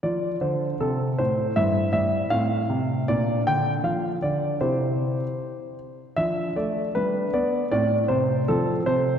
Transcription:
<<
  \new Staff \with { instrumentName = "Grand piano" } { \time 2/4 \key f \major \tempo 4 = 78 << { d''8 c''8 a'8 c''8 | e''8 e''8 f''4 | d''8 g''8 f''8 d''8 | c''4. r8 |
\key d \dorian e''8 d''8 b'8 d''8 | d''8 c''8 a'8 c''8 | } \\ { f'2 | e'4 c'4 | d'2 | r2 |
d'4 d'4 | c'4 c'4 | } >> }
  \new Staff \with { instrumentName = "Grand piano" } { \clef bass \time 2/4 \key f \major f8 d8 c8 a,8 | g,8 g8 a,8 c8 | bes,8 d8 f8 d8 | <c e' g'>4 r4 |
\key d \dorian f8 a8 g8 b8 | a,8 c8 f8 c8 | }
>>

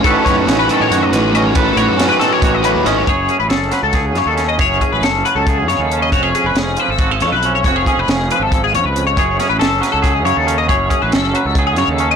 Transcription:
<<
  \new Staff \with { instrumentName = "Clean electric guitar" } { \time 7/8 \key fis \dorian \tempo 4 = 138 a'8 cis''16 a'8 b'16 a'16 cis''8 dis''16 b'8 dis''16 cis''16 | a'8 cis''16 a'8 b'16 a'16 cis''8 dis''16 b'8 dis''16 cis''16 | cis''8 gis'16 b'16 a'8 b'16 a'8 gis'16 cis''16 a'8 dis''16 | cis''8 gis'16 b'16 a'8 b'16 a'8 gis'16 cis''16 a'8 dis''16 |
cis''8 gis'16 b'16 gis'8 b'16 a'8 gis'16 cis''16 b'8 cis''16 | cis''8 gis'16 b'16 gis'8 b'16 a'8 gis'16 cis''16 b'8 cis''16 | cis''8 gis'16 b'16 a'8 b'16 a'8 gis'16 cis''16 a'8 dis''16 | cis''8 gis'16 b'16 a'8 b'16 a'8 gis'16 cis''16 a'8 dis''16 | }
  \new Staff \with { instrumentName = "Overdriven electric guitar" } { \time 7/8 \key fis \dorian <a dis' fis' b'>8 <dis' fis' b'>8 <a dis' fis' b'>8 <dis' fis' b'>4 <dis' fis' b'>8 <a dis' fis' b'>8 | <a dis' fis' b'>8 <dis' fis' b'>8 <a dis' fis' b'>8 <dis' fis' b'>4 <dis' fis' b'>8 <a dis' fis' b'>8 | r2. r8 | r2. r8 |
r2. r8 | r2. r8 | r2. r8 | r2. r8 | }
  \new Staff \with { instrumentName = "Clean electric guitar" } { \time 7/8 \key fis \dorian << { <dis cis' fis' b'>8 fis'8 cis'4 fis'4 cis'8 | b'8 fis'8 cis'4 fis'4 cis'8 | gis'8 cis'4. gis'4 cis'8 | gis'8 cis'4. gis'4 cis'8 |
fis'16 gis'16 cis'4. fis'16 a'8. cis'8 | fis'16 gis'16 cis'2. | gis'8 cis'4. gis'4 cis'8 | gis'8 cis'4. gis'4 cis'8 | } \\ { a,4. dis4 a,4 | a,4. dis4 a,4 | fis,4. fis4 cis4 | fis,4. fis4 cis4 |
eis,4. eis4 eis,4 | eis,4. eis4. eis,8 | fis,4. fis4 cis4 | fis,4. fis4 cis4 | } >> }
  \new Staff \with { instrumentName = "Fingered electric bass" } { \clef bass \time 7/8 \key fis \dorian a,,16 r16 fis,8 a,,8 r16 a,16 fis,8 a,,4~ | a,,8 a,,16 fis,8 r8. a,,8. dis,16 gis,,8 | fis,,8 r16 a,,16 fis,,8 r16 cis,8. fis,16 dis,8. | fis,,8 r16 a,,16 fis,,8 r16 cis,8. fis,16 dis,8. |
eis,,8 r16 eis,,16 eis,,8 r16 gis,,8. eis,16 b,,8. | eis,,8 r16 eis,,16 eis,,8 r16 gis,,8. eis,16 cis,8. | fis,,8 r16 a,,16 fis,,8 r16 cis,8. fis,16 dis,8. | fis,,8 r16 a,,16 fis,,8 r16 cis,8. fis,16 dis,8. | }
  \new DrumStaff \with { instrumentName = "Drums" } \drummode { \time 7/8 <hh bd>8 <hh bd sn>8 <hh sn>8 hh8 <hh sn>8 <hh sn>8 hh8 | <hh bd>8 hh8 <hh sn>8 <hh sn>8 <hh bd>8 hh8 <hh sn>8 | <hh bd>8 hh8 <hh sn>8 <hh sn>8 <hh bd sn>8 <hh sn>8 <hh sn>8 | <hh bd>8 <hh bd>8 <hh sn>8 hh8 <hh bd>8 <hh sn>8 hh8 |
<hh bd>8 hh8 <hh sn>8 hh8 <hh bd>8 <hh sn>8 hh8 | <hh bd>8 <hh bd>8 <hh sn>8 hh8 <hh bd>8 hh8 hh8 | <hh bd>8 <hh sn>8 <hh sn>8 <hh sn>8 <hh bd>8 hh8 hh8 | <hh bd>8 <hh bd>8 <hh sn>8 hh8 <hh bd>8 <hh sn>8 hh8 | }
>>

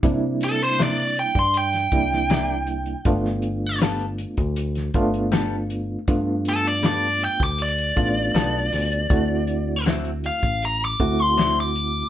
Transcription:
<<
  \new Staff \with { instrumentName = "Lead electric guitar" } { \time 4/4 \key g \mixolydian \tempo 4 = 79 r8 a'16 c''16 d''8 g''16 c'''16 g''2~ | g''4 r2. | r8 a'16 d''16 d''8 g''16 d'''16 d''2~ | d''4 r8 f''8 bes''16 d'''8 c'''8 d'''8. | }
  \new Staff \with { instrumentName = "Reed electric piano" } { \time 4/4 \key g \mixolydian <g bes d' e'>2 r8 <g bes d' e'>4. | <a b d' f'>2 r8 <a b d' f'>4. | <a b d' f'>2 r8 <a b d' f'>4. | <a c' e' fis'>2 r8 <a c' e' fis'>4. | }
  \new Staff \with { instrumentName = "Clean electric guitar" } { \time 4/4 \key g \mixolydian r4 <c bes d' e'>8 r4. <c bes d' e'>8 r8 | r4 <g b f' a'>8 r4. <g b f' a'>8 r8 | r4 <g b f' a'>8 r4. <g b f' a'>8 r8 | r4 <d fis c' e'>8 r4. <d fis c' e'>8 r8 | }
  \new Staff \with { instrumentName = "Fingered electric bass" } { \clef bass \time 4/4 \key g \mixolydian c4.~ c16 g,8. c,4. | g,,4.~ g,,16 d,8. g,,4. | g,4.~ g,16 d,8. a,,8 b,,8 d,8 | d,4.~ d,16 a,,8. d,4. | }
  \new DrumStaff \with { instrumentName = "Drums" } \drummode { \time 4/4 <hh bd>8 hh16 hh16 <hh sn>8 hh16 bd16 hh16 <hh sn>16 <hh bd>16 sn16 <hh sn>8 hh16 hh16 | <hh bd>16 sn16 hh8 <hh sn>16 hh16 hh16 <hh bd>16 hh16 <hh sn>16 <hh bd>16 hh16 <hh sn>8 hh8 | <hh bd>8 hh16 hh16 <hh sn>8 hh16 bd16 hh16 hh16 <hh bd>8 <hh sn>8 <hho sn>16 hh16 | <hh bd>8 hh8 <hh sn>16 hh16 hh16 <hh bd>16 hh16 hh16 <hh bd>16 hh16 <hh sn>8 hh8 | }
>>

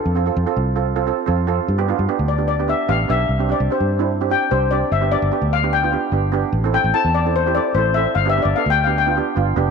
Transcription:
<<
  \new Staff \with { instrumentName = "Steel pan" } { \time 4/4 \key g \mixolydian \tempo 4 = 148 a'2 r2 | r4. d''8 d''8 e''8 f''8 e''8~ | e''8 d''8 c''8 r4 g''8 c''8 d''8 | e''8 d''4 f''8 g''4. r8 |
r8 g''8 a''8 d''8 c''8 d''8 c''8 e''8 | \tuplet 3/2 { f''8 e''8 d''8 f''8 g''8 f''8 } g''4 r4 | }
  \new Staff \with { instrumentName = "Steel pan" } { \time 4/4 \key g \mixolydian r16 <c' f' a'>16 <c' f' a'>16 r16 <c' f' a'>8 r16 <c' f' a'>16 r16 <c' f' a'>16 <c' f' a'>16 r16 <c' f' a'>16 r16 <c' f' a'>8 | r16 <b d' g'>16 <b d' f'>16 r16 <b d' g'>8 r16 <b d' g'>16 r16 <b d' g'>16 <b d' g'>16 r16 <b d' g'>16 r16 <b d' g'>8 | r16 <c' d' g'>16 <c' d' g'>16 r16 <c' d' g'>8 r16 <c' d' e'>16 r16 <c' d' g'>16 <c' d' g'>16 r16 <c' d' g'>16 r16 <c' d' g'>8 | r16 <b d' g'>16 <b d' g'>16 r16 <b d' g'>8 r16 <b d' g'>16 r16 <b d' f'>16 <b d' g'>16 r16 <b d' g'>16 r16 <b d' g'>8 |
r16 <c' e' a'>16 <c' e' a'>16 r16 <c' e' a'>8 r16 <c' e' a'>16 r16 <c' e' g'>16 <c' e' a'>16 r16 <c' e' a'>16 r16 <c' e' a'>8 | r16 <b d' g'>16 <b d' g'>16 r16 <b d' a'>8 r16 <b d' g'>16 r16 <b d' f'>16 <b d' g'>16 r16 <b d' f'>16 r16 <b d' g'>8 | }
  \new Staff \with { instrumentName = "Fingered electric bass" } { \clef bass \time 4/4 \key g \mixolydian f,8. f,16 r16 c,4.~ c,16 f,4 | g,8. g,16 r16 d,4.~ d,16 a,,8 b,,8 | c,8. c,16 r16 g,4.~ g,16 c,4 | g,,8. g,,16 r16 d,4.~ d,16 g,,4 |
a,,8. a,,16 r16 e,4.~ e,16 a,,4 | g,,8. g,,16 r16 d,4.~ d,16 g,,8 f,,8 | }
>>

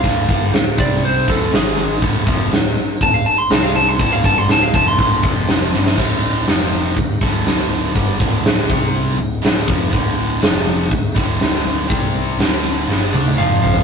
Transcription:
<<
  \new Staff \with { instrumentName = "Lead electric guitar" } { \time 4/4 \key d \minor \tempo 4 = 121 f''4. d''8 c''8 a'8 gis'4 | r2 a''16 f''16 a''16 c'''16 a''16 f''16 a''16 c'''16 | a''16 f''16 a''16 c'''16 a''16 f''16 a''16 c'''16 c'''2 | r1 |
r1 | r1 | r2. f''8 f''8 | }
  \new Staff \with { instrumentName = "Distorted electric guitar" } { \clef bass \time 4/4 \key d \minor <d, a, d>8 <g, d g>8 <d, a,>8 <c g c'>4 <d, a, d>8 <gis, dis gis>4 | <d, a, d>8 <f, c f>8 <d, a,>8 r8 <d, a,>8 r8 <c g c'>4 | <d, a, d>8 <g, d g>8 <d, a,>8 <f, c f>8 <d, a, d>8 <f, c f>4 <g, d g>8 | <d, a, d>4 <f, c f>4 <d, a,>8 <d, a, d>4. |
<g, d g>8 <d, a, d>4 <c g c'>4 <d, a,>8 <d, a, d>8 <f, c f>8 | <d, a, d>4 <f, c f>4 <d, a,>8 <d, a, d>4. | <c g c'>4 <d, a, d>4 <g, d g>8 <d a d'>8 <f, c f>4 | }
  \new Staff \with { instrumentName = "Picked electric bass" } { \clef bass \time 4/4 \key d \minor d,,8 g,,8 d,,8 c,4 d,,8 gis,,4 | d,,8 f,,8 d,,8 r8 d,,8 r8 c,4 | d,,8 g,,8 d,,8 f,,8 d,,8 f,,4 g,,8 | d,,4 f,,4 d,,8 d,,4. |
g,,8 d,,4 c,4 d,,8 d,,8 f,,8 | d,,4 f,,4 d,,8 d,,4. | c,4 d,,4 g,,8 d,8 f,,4 | }
  \new DrumStaff \with { instrumentName = "Drums" } \drummode { \time 4/4 <hho bd>8 bd8 <hho sn>8 bd8 hho8 bd8 <hho sn>4 | <hho bd>8 bd8 <hho sn>4 <hho bd>4 <hho sn>4 | <hho bd>8 bd8 <hho sn>8 bd8 <hho bd>8 bd8 <hho sn>8 sn16 sn16 | <cymc bd>4 <hho sn>4 <hho bd>8 bd8 <hho sn>4 |
<hho bd>8 bd8 <hho sn>8 bd8 hho4 <hho sn>8 bd8 | <hho bd>4 <hho sn>4 <hho bd>8 bd8 <hho sn>4 | <hho bd>4 <hho sn>4 sn8 tommh16 tommh16 toml8 tomfh16 tomfh16 | }
>>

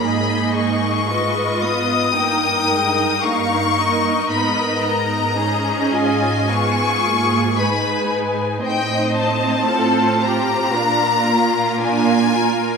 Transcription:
<<
  \new Staff \with { instrumentName = "Violin section" } { \time 4/4 \key aes \dorian \tempo 4 = 57 ces'''8 des'''4 ees'''4. des'''4 | ces'''8 bes''4 aes''8 des'''4 ces'''8 r8 | g''8 a''4 bes''4. aes''4 | }
  \new Staff \with { instrumentName = "Violin section" } { \time 4/4 \key aes \dorian << { ees''4 ees''4 g''4 f''8 ees''8~ | ees''4 ees''4 aes''4 aes''4 | ees''4 c''4 bes'4 bes'4 | } \\ { aes'4 ces''4 bes'2~ | bes'4 aes'4 aes'4 ces''4 | c''4 a'8 g'8 f'2 | } >> }
  \new Staff \with { instrumentName = "Viola section" } { \time 4/4 \key aes \dorian << { ees'4 f'4 ees'2~ | ees'4 ees'8 f'8 f'4 ees'4 | ees'4 f'4 d'4 d'8 f'8 | } \\ { bes4 aes8 ces'8 bes8 aes8 bes4 | ces'4 des'4 ces'8 bes8 aes4 | c'2 d'8 bes4. | } >> }
  \new Staff \with { instrumentName = "Cello section" } { \clef bass \time 4/4 \key aes \dorian aes,2 g,2 | aes,1 | a,2 bes,2 | }
>>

